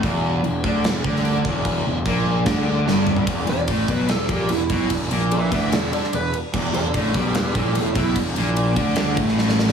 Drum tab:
CC |x---x---x---x---|x---x---x-------|----------------|----------------|
RD |----------------|----------------|x-x-x-x-x-x-x-x-|x-x-x-x-x-x-x-x-|
SD |--------o--o----|--------o---o---|--------o-------|--------o--o----|
T2 |----------------|--------------o-|----------------|----------------|
FT |----------------|---------------o|----------------|----------------|
BD |o-----o---o---o-|o---o---o-------|o---o-o---o---o-|o-----o---------|

CC |x---------------|----------------|
RD |--x-x-x-x-x-x-x-|x-x-x-x-x-x-----|
SD |--------o-------|--------o--ooooo|
T2 |----------------|----------------|
FT |----------------|----------------|
BD |o---o-o---o---o-|o-----o---o-----|